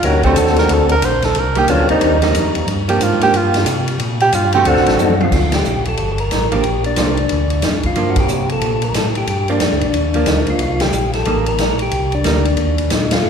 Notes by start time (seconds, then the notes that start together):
0.03 D2 A#3 C#4 D#4 F#4 G4 A#4, ride
0.23 D3 A3 C4 D4 F#4 G4 A4, kick, ride
0.36 D#2 A4, hi-hat pedal, ride
0.47 snare
0.56 A#4, snare, ride
0.69 D2 A4, ride
0.89 A#4, ride
1.02 A#1 C5, hi-hat pedal, ride
1.22 A4, snare, ride
1.35 C2, ride
1.39 A#4
1.55 G3 A#3 D#4 G4, ride
1.68 D2 F#3 B3 C#4 D4 F4 A4, hi-hat pedal, ride
1.89 D2 G3 C4 D4 D#4 A#4, ride
2.01 D#2, ride
2.22 G3 A#3 D#4, snare, ride
2.34 F2, hi-hat pedal, ride
2.55 ride
2.67 G2, ride
2.88 F3 A#3 D4 G4, ride
3.01 G#2 F4, hi-hat pedal, ride
3.21 F3 A#3 D4 G4, ride
3.34 G2 F4, ride
3.54 snare, ride
3.66 C3, hi-hat pedal, ride
3.88 ride
3.99 A#2, ride
4.20 G4, ride
4.32 G2 F4, hi-hat pedal, ride
4.52 D3 A3 C4 F#4 G4, ride
4.65 D2 A3 C4 D4 F#4 A4, ride
4.77 C2, snare
4.86 A1, snare, ride
4.99 F#2 D#4, hi-hat pedal, high tom
5.10 high tom
5.21 F4, high tom
5.32 D2, kick, snare, crash
5.52 G4, snare, ride
5.65 A#1, hi-hat pedal
5.85 A4, ride
5.97 G1, ride
6.12 A4
6.18 A#4, ride
6.31 A1, snare, hi-hat pedal, ride
6.52 F3 A#3 D4 G4, ride
6.64 A#1, ride
6.84 D4, ride
6.96 C2 F3 A#3 D4, snare, hi-hat pedal, ride
7.17 ride
7.29 D2, ride
7.50 ride
7.62 F2 D#4, snare, hi-hat pedal, ride
7.83 F4, kick, ride
7.96 G2 F3 A#3 D4, ride
8.10 F#4
8.16 kick, ride
8.20 G4
8.28 C3, hi-hat pedal
8.49 A4, ride
8.61 A#2, ride
8.82 A#4, ride
8.94 A2 A4, snare, hi-hat pedal, ride
9.15 G4, ride
9.27 G2, ride
9.48 F3 A#3 D4, ride
9.60 F2, snare, hi-hat pedal, ride
9.71 D2
9.81 A#1, ride
9.92 D#2, ride
10.14 F3 A#3 D4, ride
10.26 D2 D#4, snare, hi-hat pedal, ride
10.47 D2 F4, ride
10.58 C2, ride
10.63 F4
10.80 G4, snare, ride
10.92 A#1, hi-hat pedal
11.13 A4, snare, ride
11.25 A1 G3 A#3 D#4, ride
11.46 A#4, ride
11.58 A#1, snare, hi-hat pedal, ride
11.79 G4, ride
11.91 C2, ride
12.12 D4, ride
12.24 D2 G3 A#3 D#4, snare, hi-hat pedal, ride
12.45 ride
12.57 D#2, ride
12.78 ride
12.90 A#2 D#4, snare, hi-hat pedal, ride
13.11 F4, snare, ride
13.24 G2